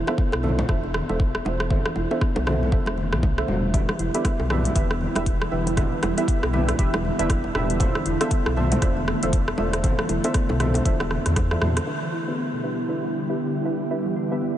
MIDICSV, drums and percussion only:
0, 0, Header, 1, 2, 480
1, 0, Start_track
1, 0, Tempo, 508475
1, 1609, Time_signature, 4, 2, 24, 8
1, 13762, End_track
2, 0, Start_track
2, 0, Title_t, "Drums"
2, 69, Note_on_c, 9, 60, 74
2, 75, Note_on_c, 9, 37, 90
2, 164, Note_off_c, 9, 60, 0
2, 170, Note_off_c, 9, 37, 0
2, 170, Note_on_c, 9, 36, 114
2, 171, Note_on_c, 9, 61, 61
2, 265, Note_off_c, 9, 36, 0
2, 265, Note_off_c, 9, 61, 0
2, 305, Note_on_c, 9, 60, 77
2, 315, Note_on_c, 9, 37, 91
2, 400, Note_off_c, 9, 60, 0
2, 409, Note_off_c, 9, 37, 0
2, 414, Note_on_c, 9, 63, 92
2, 416, Note_on_c, 9, 64, 83
2, 509, Note_off_c, 9, 63, 0
2, 510, Note_off_c, 9, 64, 0
2, 554, Note_on_c, 9, 61, 95
2, 555, Note_on_c, 9, 64, 92
2, 649, Note_off_c, 9, 61, 0
2, 649, Note_off_c, 9, 64, 0
2, 650, Note_on_c, 9, 36, 113
2, 651, Note_on_c, 9, 37, 78
2, 658, Note_on_c, 9, 63, 63
2, 744, Note_off_c, 9, 36, 0
2, 745, Note_off_c, 9, 37, 0
2, 752, Note_off_c, 9, 63, 0
2, 891, Note_on_c, 9, 37, 86
2, 896, Note_on_c, 9, 63, 60
2, 985, Note_off_c, 9, 37, 0
2, 990, Note_off_c, 9, 63, 0
2, 1033, Note_on_c, 9, 61, 64
2, 1127, Note_off_c, 9, 61, 0
2, 1130, Note_on_c, 9, 36, 112
2, 1225, Note_off_c, 9, 36, 0
2, 1273, Note_on_c, 9, 37, 77
2, 1367, Note_off_c, 9, 37, 0
2, 1377, Note_on_c, 9, 61, 84
2, 1471, Note_off_c, 9, 61, 0
2, 1512, Note_on_c, 9, 37, 92
2, 1606, Note_off_c, 9, 37, 0
2, 1610, Note_on_c, 9, 36, 111
2, 1610, Note_on_c, 9, 63, 93
2, 1611, Note_on_c, 9, 64, 93
2, 1704, Note_off_c, 9, 36, 0
2, 1704, Note_off_c, 9, 63, 0
2, 1705, Note_off_c, 9, 64, 0
2, 1752, Note_on_c, 9, 37, 90
2, 1846, Note_off_c, 9, 37, 0
2, 1847, Note_on_c, 9, 61, 62
2, 1942, Note_off_c, 9, 61, 0
2, 1993, Note_on_c, 9, 60, 70
2, 2087, Note_off_c, 9, 60, 0
2, 2090, Note_on_c, 9, 36, 117
2, 2091, Note_on_c, 9, 37, 76
2, 2184, Note_off_c, 9, 36, 0
2, 2185, Note_off_c, 9, 37, 0
2, 2227, Note_on_c, 9, 61, 85
2, 2230, Note_on_c, 9, 60, 75
2, 2321, Note_off_c, 9, 61, 0
2, 2325, Note_off_c, 9, 60, 0
2, 2332, Note_on_c, 9, 37, 84
2, 2333, Note_on_c, 9, 63, 90
2, 2336, Note_on_c, 9, 64, 77
2, 2427, Note_off_c, 9, 37, 0
2, 2428, Note_off_c, 9, 63, 0
2, 2431, Note_off_c, 9, 64, 0
2, 2481, Note_on_c, 9, 64, 91
2, 2570, Note_on_c, 9, 36, 115
2, 2576, Note_off_c, 9, 64, 0
2, 2664, Note_off_c, 9, 36, 0
2, 2701, Note_on_c, 9, 61, 61
2, 2712, Note_on_c, 9, 37, 78
2, 2796, Note_off_c, 9, 61, 0
2, 2806, Note_on_c, 9, 63, 65
2, 2807, Note_off_c, 9, 37, 0
2, 2901, Note_off_c, 9, 63, 0
2, 2951, Note_on_c, 9, 37, 89
2, 2951, Note_on_c, 9, 63, 80
2, 3045, Note_off_c, 9, 37, 0
2, 3045, Note_off_c, 9, 63, 0
2, 3049, Note_on_c, 9, 36, 114
2, 3050, Note_on_c, 9, 61, 95
2, 3144, Note_off_c, 9, 36, 0
2, 3144, Note_off_c, 9, 61, 0
2, 3192, Note_on_c, 9, 37, 87
2, 3286, Note_off_c, 9, 37, 0
2, 3287, Note_on_c, 9, 64, 103
2, 3381, Note_off_c, 9, 64, 0
2, 3528, Note_on_c, 9, 63, 79
2, 3529, Note_on_c, 9, 36, 107
2, 3532, Note_on_c, 9, 42, 51
2, 3532, Note_on_c, 9, 64, 101
2, 3622, Note_off_c, 9, 63, 0
2, 3623, Note_off_c, 9, 36, 0
2, 3626, Note_off_c, 9, 42, 0
2, 3626, Note_off_c, 9, 64, 0
2, 3671, Note_on_c, 9, 37, 86
2, 3675, Note_on_c, 9, 61, 56
2, 3765, Note_off_c, 9, 37, 0
2, 3769, Note_off_c, 9, 61, 0
2, 3769, Note_on_c, 9, 42, 28
2, 3864, Note_off_c, 9, 42, 0
2, 3913, Note_on_c, 9, 42, 39
2, 3914, Note_on_c, 9, 60, 63
2, 4007, Note_off_c, 9, 42, 0
2, 4008, Note_off_c, 9, 60, 0
2, 4009, Note_on_c, 9, 36, 110
2, 4011, Note_on_c, 9, 37, 73
2, 4011, Note_on_c, 9, 42, 50
2, 4011, Note_on_c, 9, 61, 89
2, 4103, Note_off_c, 9, 36, 0
2, 4105, Note_off_c, 9, 37, 0
2, 4105, Note_off_c, 9, 42, 0
2, 4105, Note_off_c, 9, 61, 0
2, 4150, Note_on_c, 9, 60, 80
2, 4244, Note_off_c, 9, 60, 0
2, 4249, Note_on_c, 9, 63, 81
2, 4250, Note_on_c, 9, 37, 86
2, 4256, Note_on_c, 9, 64, 77
2, 4343, Note_off_c, 9, 63, 0
2, 4344, Note_off_c, 9, 37, 0
2, 4350, Note_off_c, 9, 64, 0
2, 4383, Note_on_c, 9, 64, 84
2, 4393, Note_on_c, 9, 42, 40
2, 4477, Note_off_c, 9, 64, 0
2, 4483, Note_on_c, 9, 63, 62
2, 4487, Note_off_c, 9, 42, 0
2, 4488, Note_on_c, 9, 61, 55
2, 4489, Note_on_c, 9, 36, 112
2, 4489, Note_on_c, 9, 42, 49
2, 4578, Note_off_c, 9, 63, 0
2, 4582, Note_off_c, 9, 61, 0
2, 4584, Note_off_c, 9, 36, 0
2, 4584, Note_off_c, 9, 42, 0
2, 4632, Note_on_c, 9, 37, 76
2, 4726, Note_off_c, 9, 37, 0
2, 4728, Note_on_c, 9, 63, 69
2, 4822, Note_off_c, 9, 63, 0
2, 4866, Note_on_c, 9, 61, 84
2, 4872, Note_on_c, 9, 37, 85
2, 4872, Note_on_c, 9, 42, 39
2, 4960, Note_off_c, 9, 61, 0
2, 4966, Note_off_c, 9, 37, 0
2, 4966, Note_off_c, 9, 42, 0
2, 4968, Note_on_c, 9, 36, 108
2, 4969, Note_on_c, 9, 42, 50
2, 5063, Note_off_c, 9, 36, 0
2, 5064, Note_off_c, 9, 42, 0
2, 5113, Note_on_c, 9, 37, 90
2, 5207, Note_off_c, 9, 37, 0
2, 5350, Note_on_c, 9, 61, 56
2, 5353, Note_on_c, 9, 42, 40
2, 5445, Note_off_c, 9, 61, 0
2, 5447, Note_off_c, 9, 42, 0
2, 5447, Note_on_c, 9, 64, 95
2, 5449, Note_on_c, 9, 36, 106
2, 5450, Note_on_c, 9, 37, 74
2, 5450, Note_on_c, 9, 42, 51
2, 5456, Note_on_c, 9, 63, 91
2, 5542, Note_off_c, 9, 64, 0
2, 5543, Note_off_c, 9, 36, 0
2, 5544, Note_off_c, 9, 37, 0
2, 5544, Note_off_c, 9, 42, 0
2, 5550, Note_off_c, 9, 63, 0
2, 5690, Note_on_c, 9, 37, 84
2, 5690, Note_on_c, 9, 42, 29
2, 5695, Note_on_c, 9, 61, 92
2, 5784, Note_off_c, 9, 37, 0
2, 5784, Note_off_c, 9, 42, 0
2, 5789, Note_off_c, 9, 61, 0
2, 5828, Note_on_c, 9, 60, 64
2, 5831, Note_on_c, 9, 42, 41
2, 5923, Note_off_c, 9, 60, 0
2, 5926, Note_off_c, 9, 42, 0
2, 5928, Note_on_c, 9, 36, 107
2, 5932, Note_on_c, 9, 42, 50
2, 6022, Note_off_c, 9, 36, 0
2, 6026, Note_off_c, 9, 42, 0
2, 6071, Note_on_c, 9, 37, 74
2, 6075, Note_on_c, 9, 60, 69
2, 6166, Note_off_c, 9, 37, 0
2, 6167, Note_on_c, 9, 63, 85
2, 6170, Note_off_c, 9, 60, 0
2, 6170, Note_on_c, 9, 61, 61
2, 6173, Note_on_c, 9, 64, 76
2, 6261, Note_off_c, 9, 63, 0
2, 6265, Note_off_c, 9, 61, 0
2, 6268, Note_off_c, 9, 64, 0
2, 6311, Note_on_c, 9, 37, 82
2, 6311, Note_on_c, 9, 42, 40
2, 6311, Note_on_c, 9, 64, 77
2, 6405, Note_off_c, 9, 64, 0
2, 6406, Note_off_c, 9, 37, 0
2, 6406, Note_off_c, 9, 42, 0
2, 6408, Note_on_c, 9, 36, 106
2, 6409, Note_on_c, 9, 42, 50
2, 6502, Note_off_c, 9, 36, 0
2, 6503, Note_off_c, 9, 42, 0
2, 6549, Note_on_c, 9, 61, 80
2, 6550, Note_on_c, 9, 37, 86
2, 6643, Note_off_c, 9, 61, 0
2, 6644, Note_off_c, 9, 37, 0
2, 6654, Note_on_c, 9, 63, 65
2, 6748, Note_off_c, 9, 63, 0
2, 6788, Note_on_c, 9, 63, 82
2, 6791, Note_on_c, 9, 42, 41
2, 6883, Note_off_c, 9, 63, 0
2, 6885, Note_off_c, 9, 42, 0
2, 6887, Note_on_c, 9, 36, 109
2, 6890, Note_on_c, 9, 37, 75
2, 6890, Note_on_c, 9, 42, 51
2, 6982, Note_off_c, 9, 36, 0
2, 6984, Note_off_c, 9, 37, 0
2, 6984, Note_off_c, 9, 42, 0
2, 7023, Note_on_c, 9, 61, 57
2, 7118, Note_off_c, 9, 61, 0
2, 7127, Note_on_c, 9, 37, 84
2, 7131, Note_on_c, 9, 64, 88
2, 7222, Note_off_c, 9, 37, 0
2, 7225, Note_off_c, 9, 64, 0
2, 7269, Note_on_c, 9, 42, 40
2, 7362, Note_on_c, 9, 61, 78
2, 7363, Note_off_c, 9, 42, 0
2, 7364, Note_on_c, 9, 63, 85
2, 7367, Note_on_c, 9, 36, 106
2, 7368, Note_on_c, 9, 42, 53
2, 7372, Note_on_c, 9, 64, 85
2, 7457, Note_off_c, 9, 61, 0
2, 7459, Note_off_c, 9, 63, 0
2, 7462, Note_off_c, 9, 36, 0
2, 7462, Note_off_c, 9, 42, 0
2, 7466, Note_off_c, 9, 64, 0
2, 7508, Note_on_c, 9, 37, 72
2, 7602, Note_off_c, 9, 37, 0
2, 7606, Note_on_c, 9, 42, 29
2, 7700, Note_off_c, 9, 42, 0
2, 7748, Note_on_c, 9, 37, 83
2, 7748, Note_on_c, 9, 42, 43
2, 7748, Note_on_c, 9, 60, 72
2, 7841, Note_on_c, 9, 61, 56
2, 7843, Note_off_c, 9, 37, 0
2, 7843, Note_off_c, 9, 42, 0
2, 7843, Note_off_c, 9, 60, 0
2, 7846, Note_on_c, 9, 36, 105
2, 7846, Note_on_c, 9, 42, 51
2, 7935, Note_off_c, 9, 61, 0
2, 7940, Note_off_c, 9, 42, 0
2, 7941, Note_off_c, 9, 36, 0
2, 7988, Note_on_c, 9, 60, 70
2, 7989, Note_on_c, 9, 37, 88
2, 8082, Note_off_c, 9, 60, 0
2, 8083, Note_off_c, 9, 37, 0
2, 8089, Note_on_c, 9, 64, 87
2, 8093, Note_on_c, 9, 63, 88
2, 8184, Note_off_c, 9, 64, 0
2, 8188, Note_off_c, 9, 63, 0
2, 8226, Note_on_c, 9, 64, 93
2, 8229, Note_on_c, 9, 42, 41
2, 8232, Note_on_c, 9, 61, 78
2, 8321, Note_off_c, 9, 64, 0
2, 8324, Note_off_c, 9, 42, 0
2, 8326, Note_on_c, 9, 36, 110
2, 8327, Note_off_c, 9, 61, 0
2, 8327, Note_on_c, 9, 37, 71
2, 8327, Note_on_c, 9, 42, 53
2, 8341, Note_on_c, 9, 63, 64
2, 8420, Note_off_c, 9, 36, 0
2, 8421, Note_off_c, 9, 37, 0
2, 8421, Note_off_c, 9, 42, 0
2, 8436, Note_off_c, 9, 63, 0
2, 8570, Note_on_c, 9, 37, 82
2, 8576, Note_on_c, 9, 63, 56
2, 8664, Note_off_c, 9, 37, 0
2, 8670, Note_off_c, 9, 63, 0
2, 8710, Note_on_c, 9, 42, 42
2, 8715, Note_on_c, 9, 61, 61
2, 8804, Note_off_c, 9, 42, 0
2, 8807, Note_on_c, 9, 36, 105
2, 8808, Note_on_c, 9, 42, 55
2, 8809, Note_off_c, 9, 61, 0
2, 8901, Note_off_c, 9, 36, 0
2, 8902, Note_off_c, 9, 42, 0
2, 8948, Note_on_c, 9, 37, 73
2, 9041, Note_on_c, 9, 61, 82
2, 9042, Note_off_c, 9, 37, 0
2, 9136, Note_off_c, 9, 61, 0
2, 9189, Note_on_c, 9, 37, 82
2, 9189, Note_on_c, 9, 42, 43
2, 9283, Note_off_c, 9, 37, 0
2, 9283, Note_off_c, 9, 42, 0
2, 9286, Note_on_c, 9, 36, 108
2, 9288, Note_on_c, 9, 42, 55
2, 9290, Note_on_c, 9, 63, 92
2, 9291, Note_on_c, 9, 64, 104
2, 9381, Note_off_c, 9, 36, 0
2, 9382, Note_off_c, 9, 42, 0
2, 9384, Note_off_c, 9, 63, 0
2, 9386, Note_off_c, 9, 64, 0
2, 9428, Note_on_c, 9, 37, 86
2, 9523, Note_off_c, 9, 37, 0
2, 9525, Note_on_c, 9, 61, 63
2, 9527, Note_on_c, 9, 42, 31
2, 9619, Note_off_c, 9, 61, 0
2, 9621, Note_off_c, 9, 42, 0
2, 9668, Note_on_c, 9, 42, 45
2, 9669, Note_on_c, 9, 60, 79
2, 9763, Note_off_c, 9, 42, 0
2, 9764, Note_off_c, 9, 60, 0
2, 9764, Note_on_c, 9, 37, 72
2, 9764, Note_on_c, 9, 42, 55
2, 9766, Note_on_c, 9, 36, 110
2, 9858, Note_off_c, 9, 37, 0
2, 9858, Note_off_c, 9, 42, 0
2, 9860, Note_off_c, 9, 36, 0
2, 9906, Note_on_c, 9, 60, 74
2, 9909, Note_on_c, 9, 61, 88
2, 10000, Note_off_c, 9, 60, 0
2, 10003, Note_off_c, 9, 61, 0
2, 10007, Note_on_c, 9, 37, 85
2, 10007, Note_on_c, 9, 42, 30
2, 10009, Note_on_c, 9, 63, 91
2, 10013, Note_on_c, 9, 64, 95
2, 10101, Note_off_c, 9, 37, 0
2, 10101, Note_off_c, 9, 42, 0
2, 10103, Note_off_c, 9, 63, 0
2, 10107, Note_off_c, 9, 64, 0
2, 10141, Note_on_c, 9, 60, 78
2, 10149, Note_on_c, 9, 42, 43
2, 10154, Note_on_c, 9, 64, 97
2, 10235, Note_off_c, 9, 60, 0
2, 10244, Note_off_c, 9, 42, 0
2, 10246, Note_on_c, 9, 36, 111
2, 10248, Note_off_c, 9, 64, 0
2, 10248, Note_on_c, 9, 42, 55
2, 10341, Note_off_c, 9, 36, 0
2, 10342, Note_off_c, 9, 42, 0
2, 10386, Note_on_c, 9, 37, 74
2, 10392, Note_on_c, 9, 61, 61
2, 10481, Note_off_c, 9, 37, 0
2, 10485, Note_on_c, 9, 37, 58
2, 10487, Note_off_c, 9, 61, 0
2, 10495, Note_on_c, 9, 63, 62
2, 10580, Note_off_c, 9, 37, 0
2, 10589, Note_off_c, 9, 63, 0
2, 10628, Note_on_c, 9, 37, 59
2, 10628, Note_on_c, 9, 42, 44
2, 10636, Note_on_c, 9, 63, 77
2, 10722, Note_off_c, 9, 37, 0
2, 10722, Note_off_c, 9, 42, 0
2, 10727, Note_on_c, 9, 36, 111
2, 10727, Note_on_c, 9, 37, 77
2, 10727, Note_on_c, 9, 42, 57
2, 10729, Note_on_c, 9, 61, 83
2, 10730, Note_off_c, 9, 63, 0
2, 10822, Note_off_c, 9, 36, 0
2, 10822, Note_off_c, 9, 37, 0
2, 10822, Note_off_c, 9, 42, 0
2, 10824, Note_off_c, 9, 61, 0
2, 10868, Note_on_c, 9, 37, 70
2, 10962, Note_off_c, 9, 37, 0
2, 10965, Note_on_c, 9, 37, 89
2, 10968, Note_on_c, 9, 64, 106
2, 11060, Note_off_c, 9, 37, 0
2, 11062, Note_off_c, 9, 64, 0
2, 11109, Note_on_c, 9, 37, 83
2, 11109, Note_on_c, 9, 42, 44
2, 11203, Note_off_c, 9, 37, 0
2, 11203, Note_off_c, 9, 42, 0
2, 13762, End_track
0, 0, End_of_file